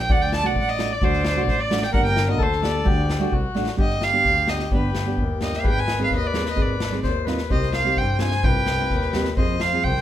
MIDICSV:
0, 0, Header, 1, 6, 480
1, 0, Start_track
1, 0, Tempo, 464756
1, 98, Time_signature, 2, 2, 24, 8
1, 10342, End_track
2, 0, Start_track
2, 0, Title_t, "Violin"
2, 0, Program_c, 0, 40
2, 0, Note_on_c, 0, 79, 81
2, 118, Note_on_c, 0, 78, 88
2, 134, Note_off_c, 0, 79, 0
2, 227, Note_on_c, 0, 79, 86
2, 242, Note_off_c, 0, 78, 0
2, 341, Note_off_c, 0, 79, 0
2, 360, Note_on_c, 0, 81, 103
2, 477, Note_on_c, 0, 78, 61
2, 493, Note_off_c, 0, 81, 0
2, 586, Note_off_c, 0, 78, 0
2, 598, Note_on_c, 0, 78, 89
2, 716, Note_on_c, 0, 75, 83
2, 731, Note_off_c, 0, 78, 0
2, 957, Note_on_c, 0, 74, 79
2, 972, Note_off_c, 0, 75, 0
2, 1078, Note_on_c, 0, 72, 88
2, 1094, Note_off_c, 0, 74, 0
2, 1535, Note_off_c, 0, 72, 0
2, 1542, Note_on_c, 0, 72, 80
2, 1657, Note_on_c, 0, 74, 79
2, 1672, Note_off_c, 0, 72, 0
2, 1894, Note_on_c, 0, 79, 88
2, 1910, Note_off_c, 0, 74, 0
2, 2004, Note_off_c, 0, 79, 0
2, 2010, Note_on_c, 0, 78, 84
2, 2115, Note_off_c, 0, 78, 0
2, 2121, Note_on_c, 0, 79, 92
2, 2345, Note_off_c, 0, 79, 0
2, 2381, Note_on_c, 0, 75, 71
2, 2510, Note_on_c, 0, 72, 82
2, 2526, Note_off_c, 0, 75, 0
2, 2729, Note_off_c, 0, 72, 0
2, 2736, Note_on_c, 0, 74, 77
2, 3403, Note_off_c, 0, 74, 0
2, 3929, Note_on_c, 0, 75, 93
2, 4166, Note_on_c, 0, 77, 101
2, 4182, Note_off_c, 0, 75, 0
2, 4640, Note_on_c, 0, 75, 84
2, 4656, Note_off_c, 0, 77, 0
2, 4876, Note_off_c, 0, 75, 0
2, 4899, Note_on_c, 0, 71, 65
2, 5333, Note_off_c, 0, 71, 0
2, 5607, Note_on_c, 0, 75, 78
2, 5743, Note_on_c, 0, 77, 70
2, 5759, Note_off_c, 0, 75, 0
2, 5848, Note_off_c, 0, 77, 0
2, 5864, Note_on_c, 0, 79, 91
2, 5984, Note_on_c, 0, 80, 101
2, 5999, Note_off_c, 0, 79, 0
2, 6208, Note_off_c, 0, 80, 0
2, 6241, Note_on_c, 0, 77, 68
2, 6330, Note_off_c, 0, 77, 0
2, 6360, Note_on_c, 0, 75, 79
2, 6477, Note_on_c, 0, 74, 82
2, 6492, Note_off_c, 0, 75, 0
2, 6696, Note_off_c, 0, 74, 0
2, 6717, Note_on_c, 0, 75, 77
2, 6838, Note_on_c, 0, 74, 68
2, 6854, Note_off_c, 0, 75, 0
2, 7298, Note_off_c, 0, 74, 0
2, 7758, Note_on_c, 0, 75, 83
2, 7983, Note_off_c, 0, 75, 0
2, 8001, Note_on_c, 0, 77, 89
2, 8239, Note_on_c, 0, 79, 79
2, 8255, Note_off_c, 0, 77, 0
2, 8475, Note_off_c, 0, 79, 0
2, 8481, Note_on_c, 0, 80, 97
2, 8715, Note_on_c, 0, 79, 94
2, 8730, Note_off_c, 0, 80, 0
2, 9444, Note_off_c, 0, 79, 0
2, 9681, Note_on_c, 0, 75, 86
2, 9930, Note_on_c, 0, 77, 91
2, 9946, Note_off_c, 0, 75, 0
2, 10161, Note_on_c, 0, 79, 99
2, 10176, Note_off_c, 0, 77, 0
2, 10342, Note_off_c, 0, 79, 0
2, 10342, End_track
3, 0, Start_track
3, 0, Title_t, "Accordion"
3, 0, Program_c, 1, 21
3, 108, Note_on_c, 1, 74, 114
3, 1015, Note_off_c, 1, 74, 0
3, 1038, Note_on_c, 1, 74, 115
3, 1957, Note_off_c, 1, 74, 0
3, 1990, Note_on_c, 1, 70, 104
3, 2462, Note_on_c, 1, 69, 103
3, 2489, Note_off_c, 1, 70, 0
3, 2949, Note_on_c, 1, 67, 90
3, 2964, Note_off_c, 1, 69, 0
3, 3428, Note_on_c, 1, 66, 86
3, 3447, Note_off_c, 1, 67, 0
3, 3877, Note_off_c, 1, 66, 0
3, 3910, Note_on_c, 1, 67, 87
3, 5815, Note_on_c, 1, 71, 104
3, 5887, Note_off_c, 1, 67, 0
3, 7226, Note_off_c, 1, 71, 0
3, 7264, Note_on_c, 1, 72, 105
3, 7488, Note_on_c, 1, 71, 86
3, 7493, Note_off_c, 1, 72, 0
3, 7746, Note_on_c, 1, 72, 91
3, 7751, Note_off_c, 1, 71, 0
3, 8718, Note_on_c, 1, 71, 104
3, 8747, Note_off_c, 1, 72, 0
3, 9646, Note_off_c, 1, 71, 0
3, 9674, Note_on_c, 1, 72, 82
3, 10150, Note_off_c, 1, 72, 0
3, 10165, Note_on_c, 1, 72, 88
3, 10342, Note_off_c, 1, 72, 0
3, 10342, End_track
4, 0, Start_track
4, 0, Title_t, "Nylon-string guitar"
4, 0, Program_c, 2, 24
4, 91, Note_on_c, 2, 57, 56
4, 99, Note_on_c, 2, 62, 64
4, 104, Note_on_c, 2, 66, 70
4, 273, Note_off_c, 2, 57, 0
4, 277, Note_off_c, 2, 62, 0
4, 280, Note_off_c, 2, 66, 0
4, 441, Note_on_c, 2, 57, 69
4, 448, Note_on_c, 2, 62, 53
4, 459, Note_on_c, 2, 66, 67
4, 627, Note_off_c, 2, 57, 0
4, 631, Note_off_c, 2, 62, 0
4, 636, Note_off_c, 2, 66, 0
4, 803, Note_on_c, 2, 57, 65
4, 808, Note_on_c, 2, 62, 51
4, 816, Note_on_c, 2, 66, 65
4, 928, Note_off_c, 2, 57, 0
4, 931, Note_off_c, 2, 62, 0
4, 933, Note_off_c, 2, 66, 0
4, 1044, Note_on_c, 2, 57, 72
4, 1057, Note_on_c, 2, 62, 57
4, 1060, Note_on_c, 2, 66, 80
4, 1227, Note_off_c, 2, 57, 0
4, 1234, Note_off_c, 2, 62, 0
4, 1234, Note_off_c, 2, 66, 0
4, 1394, Note_on_c, 2, 57, 63
4, 1407, Note_on_c, 2, 62, 61
4, 1414, Note_on_c, 2, 66, 72
4, 1581, Note_off_c, 2, 57, 0
4, 1587, Note_off_c, 2, 62, 0
4, 1591, Note_off_c, 2, 66, 0
4, 1756, Note_on_c, 2, 57, 69
4, 1761, Note_on_c, 2, 62, 60
4, 1766, Note_on_c, 2, 66, 70
4, 1881, Note_off_c, 2, 57, 0
4, 1883, Note_off_c, 2, 62, 0
4, 1886, Note_off_c, 2, 66, 0
4, 1993, Note_on_c, 2, 58, 66
4, 2003, Note_on_c, 2, 62, 60
4, 2005, Note_on_c, 2, 67, 72
4, 2178, Note_off_c, 2, 58, 0
4, 2183, Note_off_c, 2, 67, 0
4, 2184, Note_off_c, 2, 62, 0
4, 2348, Note_on_c, 2, 58, 63
4, 2356, Note_on_c, 2, 62, 55
4, 2361, Note_on_c, 2, 66, 81
4, 2535, Note_off_c, 2, 58, 0
4, 2538, Note_off_c, 2, 62, 0
4, 2541, Note_off_c, 2, 66, 0
4, 2701, Note_on_c, 2, 58, 53
4, 2710, Note_on_c, 2, 62, 61
4, 2719, Note_on_c, 2, 67, 71
4, 2830, Note_off_c, 2, 58, 0
4, 2835, Note_off_c, 2, 62, 0
4, 2839, Note_off_c, 2, 67, 0
4, 2936, Note_on_c, 2, 57, 71
4, 2942, Note_on_c, 2, 62, 51
4, 2947, Note_on_c, 2, 66, 75
4, 3127, Note_off_c, 2, 57, 0
4, 3130, Note_off_c, 2, 62, 0
4, 3132, Note_off_c, 2, 66, 0
4, 3298, Note_on_c, 2, 57, 77
4, 3307, Note_on_c, 2, 62, 68
4, 3314, Note_on_c, 2, 66, 83
4, 3487, Note_off_c, 2, 57, 0
4, 3493, Note_off_c, 2, 62, 0
4, 3493, Note_off_c, 2, 66, 0
4, 3661, Note_on_c, 2, 57, 74
4, 3672, Note_on_c, 2, 62, 64
4, 3681, Note_on_c, 2, 66, 81
4, 3788, Note_off_c, 2, 57, 0
4, 3794, Note_off_c, 2, 62, 0
4, 3798, Note_off_c, 2, 66, 0
4, 3890, Note_on_c, 2, 59, 63
4, 3895, Note_on_c, 2, 62, 54
4, 3906, Note_on_c, 2, 67, 72
4, 4082, Note_off_c, 2, 59, 0
4, 4084, Note_off_c, 2, 62, 0
4, 4090, Note_off_c, 2, 67, 0
4, 4265, Note_on_c, 2, 59, 61
4, 4269, Note_on_c, 2, 62, 50
4, 4274, Note_on_c, 2, 67, 67
4, 4449, Note_off_c, 2, 59, 0
4, 4451, Note_off_c, 2, 62, 0
4, 4453, Note_off_c, 2, 67, 0
4, 4626, Note_on_c, 2, 59, 54
4, 4633, Note_on_c, 2, 62, 52
4, 4640, Note_on_c, 2, 67, 60
4, 4750, Note_off_c, 2, 59, 0
4, 4751, Note_off_c, 2, 62, 0
4, 4756, Note_off_c, 2, 67, 0
4, 4872, Note_on_c, 2, 59, 73
4, 4880, Note_on_c, 2, 62, 67
4, 4887, Note_on_c, 2, 67, 73
4, 5052, Note_off_c, 2, 59, 0
4, 5056, Note_off_c, 2, 62, 0
4, 5060, Note_off_c, 2, 67, 0
4, 5226, Note_on_c, 2, 59, 62
4, 5235, Note_on_c, 2, 62, 59
4, 5238, Note_on_c, 2, 67, 59
4, 5409, Note_off_c, 2, 59, 0
4, 5414, Note_off_c, 2, 62, 0
4, 5414, Note_off_c, 2, 67, 0
4, 5582, Note_on_c, 2, 59, 60
4, 5590, Note_on_c, 2, 62, 62
4, 5600, Note_on_c, 2, 65, 64
4, 5707, Note_off_c, 2, 59, 0
4, 5711, Note_off_c, 2, 62, 0
4, 5716, Note_off_c, 2, 65, 0
4, 5817, Note_on_c, 2, 60, 55
4, 5831, Note_on_c, 2, 63, 62
4, 5835, Note_on_c, 2, 68, 67
4, 6005, Note_off_c, 2, 60, 0
4, 6012, Note_off_c, 2, 63, 0
4, 6014, Note_off_c, 2, 68, 0
4, 6187, Note_on_c, 2, 60, 62
4, 6192, Note_on_c, 2, 63, 58
4, 6201, Note_on_c, 2, 68, 71
4, 6370, Note_off_c, 2, 60, 0
4, 6373, Note_off_c, 2, 63, 0
4, 6377, Note_off_c, 2, 68, 0
4, 6544, Note_on_c, 2, 60, 61
4, 6555, Note_on_c, 2, 63, 50
4, 6560, Note_on_c, 2, 68, 63
4, 6669, Note_off_c, 2, 60, 0
4, 6674, Note_off_c, 2, 63, 0
4, 6677, Note_off_c, 2, 68, 0
4, 6771, Note_on_c, 2, 60, 57
4, 6779, Note_on_c, 2, 63, 61
4, 6785, Note_on_c, 2, 68, 66
4, 6964, Note_off_c, 2, 60, 0
4, 6966, Note_off_c, 2, 63, 0
4, 6970, Note_off_c, 2, 68, 0
4, 7138, Note_on_c, 2, 60, 60
4, 7144, Note_on_c, 2, 63, 59
4, 7153, Note_on_c, 2, 68, 65
4, 7327, Note_off_c, 2, 60, 0
4, 7330, Note_off_c, 2, 63, 0
4, 7335, Note_off_c, 2, 68, 0
4, 7508, Note_on_c, 2, 60, 69
4, 7516, Note_on_c, 2, 63, 62
4, 7524, Note_on_c, 2, 65, 69
4, 7633, Note_off_c, 2, 60, 0
4, 7637, Note_off_c, 2, 63, 0
4, 7641, Note_off_c, 2, 65, 0
4, 7743, Note_on_c, 2, 60, 53
4, 7753, Note_on_c, 2, 63, 48
4, 7759, Note_on_c, 2, 67, 71
4, 7932, Note_off_c, 2, 60, 0
4, 7936, Note_off_c, 2, 63, 0
4, 7939, Note_off_c, 2, 67, 0
4, 8101, Note_on_c, 2, 60, 66
4, 8111, Note_on_c, 2, 63, 58
4, 8116, Note_on_c, 2, 67, 68
4, 8292, Note_off_c, 2, 60, 0
4, 8297, Note_off_c, 2, 63, 0
4, 8299, Note_off_c, 2, 67, 0
4, 8471, Note_on_c, 2, 60, 57
4, 8481, Note_on_c, 2, 63, 58
4, 8484, Note_on_c, 2, 65, 56
4, 8597, Note_off_c, 2, 60, 0
4, 8602, Note_off_c, 2, 63, 0
4, 8603, Note_off_c, 2, 65, 0
4, 8708, Note_on_c, 2, 60, 62
4, 8714, Note_on_c, 2, 63, 56
4, 8721, Note_on_c, 2, 65, 60
4, 8897, Note_off_c, 2, 60, 0
4, 8899, Note_off_c, 2, 63, 0
4, 8904, Note_off_c, 2, 65, 0
4, 9080, Note_on_c, 2, 60, 60
4, 9087, Note_on_c, 2, 63, 57
4, 9093, Note_on_c, 2, 65, 68
4, 9264, Note_off_c, 2, 60, 0
4, 9268, Note_off_c, 2, 63, 0
4, 9271, Note_off_c, 2, 65, 0
4, 9446, Note_on_c, 2, 60, 76
4, 9453, Note_on_c, 2, 63, 66
4, 9457, Note_on_c, 2, 67, 79
4, 9568, Note_off_c, 2, 60, 0
4, 9572, Note_off_c, 2, 63, 0
4, 9574, Note_off_c, 2, 67, 0
4, 9686, Note_on_c, 2, 60, 62
4, 9694, Note_on_c, 2, 65, 59
4, 9699, Note_on_c, 2, 68, 68
4, 9871, Note_off_c, 2, 60, 0
4, 9872, Note_off_c, 2, 65, 0
4, 9876, Note_off_c, 2, 68, 0
4, 10044, Note_on_c, 2, 60, 59
4, 10056, Note_on_c, 2, 65, 57
4, 10062, Note_on_c, 2, 68, 71
4, 10230, Note_off_c, 2, 60, 0
4, 10236, Note_off_c, 2, 65, 0
4, 10239, Note_off_c, 2, 68, 0
4, 10342, End_track
5, 0, Start_track
5, 0, Title_t, "Double bass"
5, 0, Program_c, 3, 43
5, 100, Note_on_c, 3, 38, 82
5, 578, Note_on_c, 3, 33, 86
5, 593, Note_off_c, 3, 38, 0
5, 863, Note_off_c, 3, 33, 0
5, 1050, Note_on_c, 3, 38, 95
5, 1529, Note_on_c, 3, 33, 90
5, 1545, Note_off_c, 3, 38, 0
5, 1815, Note_off_c, 3, 33, 0
5, 2001, Note_on_c, 3, 31, 101
5, 2484, Note_on_c, 3, 38, 94
5, 2500, Note_off_c, 3, 31, 0
5, 2770, Note_off_c, 3, 38, 0
5, 2962, Note_on_c, 3, 38, 98
5, 3430, Note_off_c, 3, 38, 0
5, 3436, Note_on_c, 3, 36, 76
5, 3652, Note_off_c, 3, 36, 0
5, 3679, Note_on_c, 3, 33, 78
5, 3893, Note_off_c, 3, 33, 0
5, 3912, Note_on_c, 3, 31, 78
5, 4200, Note_off_c, 3, 31, 0
5, 4392, Note_on_c, 3, 38, 89
5, 4680, Note_off_c, 3, 38, 0
5, 4867, Note_on_c, 3, 31, 93
5, 5157, Note_off_c, 3, 31, 0
5, 5352, Note_on_c, 3, 39, 90
5, 5640, Note_off_c, 3, 39, 0
5, 5834, Note_on_c, 3, 32, 92
5, 6122, Note_off_c, 3, 32, 0
5, 6312, Note_on_c, 3, 39, 93
5, 6601, Note_off_c, 3, 39, 0
5, 6790, Note_on_c, 3, 32, 87
5, 7080, Note_off_c, 3, 32, 0
5, 7272, Note_on_c, 3, 39, 90
5, 7562, Note_off_c, 3, 39, 0
5, 7750, Note_on_c, 3, 36, 98
5, 8042, Note_off_c, 3, 36, 0
5, 8231, Note_on_c, 3, 43, 98
5, 8524, Note_off_c, 3, 43, 0
5, 8709, Note_on_c, 3, 36, 100
5, 9003, Note_off_c, 3, 36, 0
5, 9202, Note_on_c, 3, 39, 96
5, 9494, Note_off_c, 3, 39, 0
5, 9683, Note_on_c, 3, 41, 92
5, 9976, Note_off_c, 3, 41, 0
5, 10165, Note_on_c, 3, 36, 99
5, 10342, Note_off_c, 3, 36, 0
5, 10342, End_track
6, 0, Start_track
6, 0, Title_t, "Drums"
6, 99, Note_on_c, 9, 36, 99
6, 202, Note_off_c, 9, 36, 0
6, 220, Note_on_c, 9, 38, 21
6, 323, Note_off_c, 9, 38, 0
6, 335, Note_on_c, 9, 38, 80
6, 438, Note_off_c, 9, 38, 0
6, 576, Note_on_c, 9, 36, 60
6, 679, Note_off_c, 9, 36, 0
6, 697, Note_on_c, 9, 38, 26
6, 800, Note_off_c, 9, 38, 0
6, 811, Note_on_c, 9, 38, 82
6, 914, Note_off_c, 9, 38, 0
6, 1050, Note_on_c, 9, 36, 88
6, 1154, Note_off_c, 9, 36, 0
6, 1170, Note_on_c, 9, 38, 22
6, 1274, Note_off_c, 9, 38, 0
6, 1286, Note_on_c, 9, 38, 94
6, 1389, Note_off_c, 9, 38, 0
6, 1525, Note_on_c, 9, 38, 26
6, 1528, Note_on_c, 9, 36, 55
6, 1628, Note_off_c, 9, 38, 0
6, 1632, Note_off_c, 9, 36, 0
6, 1767, Note_on_c, 9, 38, 90
6, 1870, Note_off_c, 9, 38, 0
6, 1885, Note_on_c, 9, 38, 63
6, 1988, Note_off_c, 9, 38, 0
6, 2003, Note_on_c, 9, 36, 87
6, 2106, Note_off_c, 9, 36, 0
6, 2118, Note_on_c, 9, 38, 24
6, 2222, Note_off_c, 9, 38, 0
6, 2236, Note_on_c, 9, 38, 86
6, 2339, Note_off_c, 9, 38, 0
6, 2479, Note_on_c, 9, 36, 65
6, 2583, Note_off_c, 9, 36, 0
6, 2603, Note_on_c, 9, 38, 26
6, 2706, Note_off_c, 9, 38, 0
6, 2722, Note_on_c, 9, 38, 81
6, 2825, Note_off_c, 9, 38, 0
6, 2957, Note_on_c, 9, 36, 92
6, 3060, Note_off_c, 9, 36, 0
6, 3197, Note_on_c, 9, 38, 85
6, 3300, Note_off_c, 9, 38, 0
6, 3432, Note_on_c, 9, 36, 64
6, 3535, Note_off_c, 9, 36, 0
6, 3671, Note_on_c, 9, 38, 46
6, 3774, Note_off_c, 9, 38, 0
6, 3781, Note_on_c, 9, 38, 61
6, 3885, Note_off_c, 9, 38, 0
6, 3909, Note_on_c, 9, 36, 89
6, 4013, Note_off_c, 9, 36, 0
6, 4025, Note_on_c, 9, 38, 22
6, 4128, Note_off_c, 9, 38, 0
6, 4146, Note_on_c, 9, 38, 83
6, 4249, Note_off_c, 9, 38, 0
6, 4388, Note_on_c, 9, 36, 53
6, 4491, Note_off_c, 9, 36, 0
6, 4621, Note_on_c, 9, 38, 81
6, 4725, Note_off_c, 9, 38, 0
6, 4744, Note_on_c, 9, 38, 49
6, 4847, Note_off_c, 9, 38, 0
6, 4868, Note_on_c, 9, 36, 81
6, 4972, Note_off_c, 9, 36, 0
6, 5107, Note_on_c, 9, 38, 81
6, 5210, Note_off_c, 9, 38, 0
6, 5347, Note_on_c, 9, 36, 59
6, 5450, Note_off_c, 9, 36, 0
6, 5585, Note_on_c, 9, 38, 79
6, 5688, Note_off_c, 9, 38, 0
6, 5716, Note_on_c, 9, 38, 54
6, 5819, Note_off_c, 9, 38, 0
6, 5832, Note_on_c, 9, 36, 90
6, 5935, Note_off_c, 9, 36, 0
6, 5955, Note_on_c, 9, 38, 23
6, 6058, Note_off_c, 9, 38, 0
6, 6071, Note_on_c, 9, 38, 90
6, 6174, Note_off_c, 9, 38, 0
6, 6195, Note_on_c, 9, 38, 21
6, 6298, Note_off_c, 9, 38, 0
6, 6309, Note_on_c, 9, 38, 23
6, 6311, Note_on_c, 9, 36, 49
6, 6413, Note_off_c, 9, 38, 0
6, 6414, Note_off_c, 9, 36, 0
6, 6548, Note_on_c, 9, 38, 78
6, 6652, Note_off_c, 9, 38, 0
6, 6667, Note_on_c, 9, 38, 57
6, 6770, Note_off_c, 9, 38, 0
6, 6790, Note_on_c, 9, 36, 80
6, 6893, Note_off_c, 9, 36, 0
6, 7026, Note_on_c, 9, 38, 91
6, 7129, Note_off_c, 9, 38, 0
6, 7147, Note_on_c, 9, 38, 25
6, 7251, Note_off_c, 9, 38, 0
6, 7263, Note_on_c, 9, 38, 39
6, 7270, Note_on_c, 9, 36, 54
6, 7366, Note_off_c, 9, 38, 0
6, 7373, Note_off_c, 9, 36, 0
6, 7506, Note_on_c, 9, 38, 65
6, 7609, Note_off_c, 9, 38, 0
6, 7621, Note_on_c, 9, 38, 65
6, 7725, Note_off_c, 9, 38, 0
6, 7750, Note_on_c, 9, 36, 77
6, 7854, Note_off_c, 9, 36, 0
6, 7872, Note_on_c, 9, 38, 23
6, 7976, Note_off_c, 9, 38, 0
6, 7983, Note_on_c, 9, 38, 74
6, 8087, Note_off_c, 9, 38, 0
6, 8107, Note_on_c, 9, 38, 24
6, 8210, Note_off_c, 9, 38, 0
6, 8227, Note_on_c, 9, 38, 20
6, 8231, Note_on_c, 9, 36, 54
6, 8330, Note_off_c, 9, 38, 0
6, 8334, Note_off_c, 9, 36, 0
6, 8458, Note_on_c, 9, 38, 88
6, 8561, Note_off_c, 9, 38, 0
6, 8580, Note_on_c, 9, 38, 49
6, 8684, Note_off_c, 9, 38, 0
6, 8712, Note_on_c, 9, 36, 95
6, 8815, Note_off_c, 9, 36, 0
6, 8946, Note_on_c, 9, 38, 82
6, 9050, Note_off_c, 9, 38, 0
6, 9071, Note_on_c, 9, 38, 20
6, 9174, Note_off_c, 9, 38, 0
6, 9190, Note_on_c, 9, 38, 23
6, 9198, Note_on_c, 9, 36, 59
6, 9293, Note_off_c, 9, 38, 0
6, 9301, Note_off_c, 9, 36, 0
6, 9311, Note_on_c, 9, 38, 26
6, 9414, Note_off_c, 9, 38, 0
6, 9432, Note_on_c, 9, 38, 77
6, 9536, Note_off_c, 9, 38, 0
6, 9549, Note_on_c, 9, 38, 58
6, 9652, Note_off_c, 9, 38, 0
6, 9679, Note_on_c, 9, 36, 88
6, 9782, Note_off_c, 9, 36, 0
6, 9912, Note_on_c, 9, 38, 86
6, 10015, Note_off_c, 9, 38, 0
6, 10159, Note_on_c, 9, 38, 21
6, 10166, Note_on_c, 9, 36, 51
6, 10262, Note_off_c, 9, 38, 0
6, 10269, Note_off_c, 9, 36, 0
6, 10289, Note_on_c, 9, 38, 28
6, 10342, Note_off_c, 9, 38, 0
6, 10342, End_track
0, 0, End_of_file